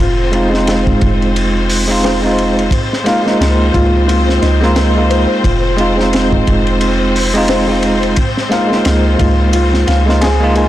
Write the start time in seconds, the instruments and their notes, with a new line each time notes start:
0.00 808-style bass F1, string section C4 C5, felt piano F4
0.32 tine electric piano G#3 C4 D#4, ride
0.36 tine electric piano F4
0.50 tine electric piano G#3 C4
0.54 tine electric piano D#4 F4, snare
0.67 snare, ride
0.87 kick
1.01 808-style bass F1, kick, ride
1.22 ride
1.36 ride
1.70 open hi-hat
1.88 tine electric piano G#3 C4 D#4 F4, ride
2.04 felt piano C5, snare, ride
2.22 tine electric piano G#3 C4 D#4
2.26 tine electric piano F4
2.38 ride
2.59 ride
2.71 kick, ride
2.93 snare
3.04 tine electric piano G#3 A#3 D#4 F4, felt piano F5, snare, ride
3.22 tine electric piano G#3 A#3
3.27 tine electric piano D#4 F4, snare
3.41 808-style bass C#2, snare, ride
3.74 808-style bass C#2, felt piano F4, kick, ride
4.08 felt piano F4, ride
4.29 snare
4.42 808-style bass C#2, felt piano D#4, snare, ride
4.61 tine electric piano G#3 A#3 D#4, snare
4.65 tine electric piano F4
4.76 felt piano C5, snare, ride
4.95 tine electric piano G#3 A#3 D#4
4.99 tine electric piano F4
5.10 felt piano C5, ride
5.44 808-style bass F1, felt piano F4, kick, ride
5.77 tine electric piano G#3 C4 D#4, ride
5.81 tine electric piano F4
5.95 tine electric piano G#3 C4
6.00 tine electric piano D#4 F4, snare
6.13 snare, ride
6.32 kick
6.47 808-style bass F1, kick, ride
6.67 ride
6.81 ride
7.16 open hi-hat
7.34 tine electric piano G#3 C4 D#4 F4, ride
7.48 felt piano C5, snare, ride
7.68 tine electric piano G#3 C4 D#4 F4
7.83 ride
8.03 ride
8.16 kick, ride
8.37 snare
8.50 tine electric piano G#3 A#3 D#4, felt piano F5, snare, ride
8.54 tine electric piano F4
8.68 tine electric piano G#3 A#3
8.72 tine electric piano D#4 F4, snare
8.85 808-style bass C#2, snare, ride
9.19 808-style bass C#2, felt piano F4, kick, ride
9.53 felt piano F4, ride
9.74 snare
9.87 808-style bass C#2, felt piano F5, snare, ride
10.06 tine electric piano G#3 A#3 D#4, snare
10.10 tine electric piano F4
10.21 felt piano G#4, snare, ride
10.40 tine electric piano G#3 A#3 D#4 F4
10.54 tine electric piano G#3 A#3 D#4 F4, felt piano G#4, ride